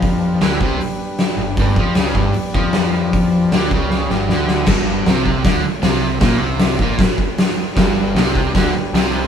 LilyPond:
<<
  \new Staff \with { instrumentName = "Transistor combo organ" } { \time 4/4 \key g \mixolydian \tempo 4 = 155 <d' g' b'>1 | <g' b' d''>1~ | <g' b' d''>1 | \key g \major r1 |
r1 | <d' g' b'>1 | }
  \new Staff \with { instrumentName = "Overdriven electric guitar" } { \clef bass \time 4/4 \key g \mixolydian f4 d8 c8 r4. g,8 | g,8 f8 cis8 g,8 r8 f4.~ | f4 d8 cis4 g,8 d4 | \key g \major g,4 c4 d8 r8 c4 |
bes,8 c4 bes,8 r2 | g,4 c4 d8 r8 c4 | }
  \new Staff \with { instrumentName = "Picked electric bass" } { \clef bass \time 4/4 \key g \mixolydian f,4 d,8 c,8 r4. g,,8 | g,,8 f,8 cis,8 g,,8 r8 f,4.~ | f,4 d,8 cis,4 g,,8 d,4 | \key g \major g,,4 c,4 d,8 r8 c,4 |
bes,,8 c,4 bes,,8 r2 | g,,4 c,4 d,8 r8 c,4 | }
  \new DrumStaff \with { instrumentName = "Drums" } \drummode { \time 4/4 <hho bd>4 <hho sn>8 bd8 hho4 <hho sn>4 | <hho bd>8 bd8 <hho sn>8 bd8 hho8 bd8 <hho sn>4 | <hho bd>4 <hho sn>8 bd8 sn8 sn8 sn8 sn8 | <cymc bd sn>4 <hho sn>8 bd8 <hho bd sn>4 <hho sn>4 |
<hho bd sn>4 <hho sn>8 bd8 <hho bd sn>8 bd8 <hho sn>4 | <hho bd sn>4 <hho sn>8 bd8 <hho bd sn>4 <hho sn>4 | }
>>